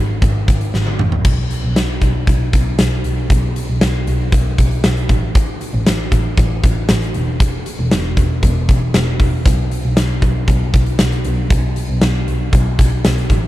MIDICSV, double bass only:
0, 0, Header, 1, 2, 480
1, 0, Start_track
1, 0, Tempo, 512821
1, 1169, Time_signature, 4, 2, 24, 8
1, 12613, End_track
2, 0, Start_track
2, 0, Title_t, "Double bass"
2, 0, Program_c, 0, 43
2, 0, Note_on_c, 0, 32, 87
2, 140, Note_off_c, 0, 32, 0
2, 206, Note_on_c, 0, 32, 100
2, 380, Note_off_c, 0, 32, 0
2, 450, Note_on_c, 0, 32, 89
2, 623, Note_off_c, 0, 32, 0
2, 687, Note_on_c, 0, 32, 81
2, 860, Note_off_c, 0, 32, 0
2, 927, Note_on_c, 0, 33, 81
2, 1100, Note_off_c, 0, 33, 0
2, 1168, Note_on_c, 0, 35, 95
2, 1341, Note_off_c, 0, 35, 0
2, 1526, Note_on_c, 0, 35, 86
2, 1614, Note_off_c, 0, 35, 0
2, 1645, Note_on_c, 0, 35, 81
2, 1819, Note_off_c, 0, 35, 0
2, 1887, Note_on_c, 0, 35, 87
2, 2060, Note_off_c, 0, 35, 0
2, 2129, Note_on_c, 0, 35, 96
2, 2301, Note_off_c, 0, 35, 0
2, 2370, Note_on_c, 0, 35, 93
2, 2543, Note_off_c, 0, 35, 0
2, 2611, Note_on_c, 0, 35, 88
2, 2783, Note_off_c, 0, 35, 0
2, 2850, Note_on_c, 0, 35, 85
2, 3022, Note_off_c, 0, 35, 0
2, 3090, Note_on_c, 0, 35, 96
2, 3262, Note_off_c, 0, 35, 0
2, 3449, Note_on_c, 0, 35, 78
2, 3535, Note_off_c, 0, 35, 0
2, 3569, Note_on_c, 0, 35, 93
2, 3742, Note_off_c, 0, 35, 0
2, 3808, Note_on_c, 0, 35, 99
2, 3981, Note_off_c, 0, 35, 0
2, 4048, Note_on_c, 0, 35, 95
2, 4221, Note_off_c, 0, 35, 0
2, 4290, Note_on_c, 0, 35, 101
2, 4462, Note_off_c, 0, 35, 0
2, 4529, Note_on_c, 0, 35, 99
2, 4702, Note_off_c, 0, 35, 0
2, 4767, Note_on_c, 0, 33, 97
2, 5113, Note_off_c, 0, 33, 0
2, 5368, Note_on_c, 0, 33, 91
2, 5455, Note_off_c, 0, 33, 0
2, 5487, Note_on_c, 0, 33, 88
2, 5660, Note_off_c, 0, 33, 0
2, 5727, Note_on_c, 0, 33, 90
2, 5901, Note_off_c, 0, 33, 0
2, 5967, Note_on_c, 0, 33, 103
2, 6140, Note_off_c, 0, 33, 0
2, 6212, Note_on_c, 0, 33, 92
2, 6384, Note_off_c, 0, 33, 0
2, 6452, Note_on_c, 0, 33, 100
2, 6624, Note_off_c, 0, 33, 0
2, 6693, Note_on_c, 0, 28, 91
2, 7037, Note_off_c, 0, 28, 0
2, 7291, Note_on_c, 0, 28, 89
2, 7377, Note_off_c, 0, 28, 0
2, 7412, Note_on_c, 0, 28, 91
2, 7584, Note_off_c, 0, 28, 0
2, 7648, Note_on_c, 0, 28, 93
2, 7821, Note_off_c, 0, 28, 0
2, 7888, Note_on_c, 0, 28, 99
2, 8061, Note_off_c, 0, 28, 0
2, 8132, Note_on_c, 0, 28, 93
2, 8304, Note_off_c, 0, 28, 0
2, 8367, Note_on_c, 0, 28, 92
2, 8540, Note_off_c, 0, 28, 0
2, 8608, Note_on_c, 0, 28, 82
2, 8846, Note_off_c, 0, 28, 0
2, 8851, Note_on_c, 0, 35, 101
2, 9023, Note_off_c, 0, 35, 0
2, 9208, Note_on_c, 0, 35, 88
2, 9294, Note_off_c, 0, 35, 0
2, 9330, Note_on_c, 0, 35, 87
2, 9502, Note_off_c, 0, 35, 0
2, 9567, Note_on_c, 0, 35, 91
2, 9740, Note_off_c, 0, 35, 0
2, 9808, Note_on_c, 0, 35, 102
2, 9981, Note_off_c, 0, 35, 0
2, 10050, Note_on_c, 0, 35, 94
2, 10222, Note_off_c, 0, 35, 0
2, 10291, Note_on_c, 0, 35, 93
2, 10463, Note_off_c, 0, 35, 0
2, 10532, Note_on_c, 0, 35, 89
2, 10704, Note_off_c, 0, 35, 0
2, 10769, Note_on_c, 0, 35, 98
2, 10942, Note_off_c, 0, 35, 0
2, 11133, Note_on_c, 0, 35, 86
2, 11218, Note_off_c, 0, 35, 0
2, 11250, Note_on_c, 0, 35, 101
2, 11423, Note_off_c, 0, 35, 0
2, 11493, Note_on_c, 0, 35, 99
2, 11664, Note_off_c, 0, 35, 0
2, 11727, Note_on_c, 0, 35, 98
2, 11901, Note_off_c, 0, 35, 0
2, 11971, Note_on_c, 0, 35, 98
2, 12143, Note_off_c, 0, 35, 0
2, 12213, Note_on_c, 0, 35, 104
2, 12384, Note_off_c, 0, 35, 0
2, 12448, Note_on_c, 0, 33, 93
2, 12613, Note_off_c, 0, 33, 0
2, 12613, End_track
0, 0, End_of_file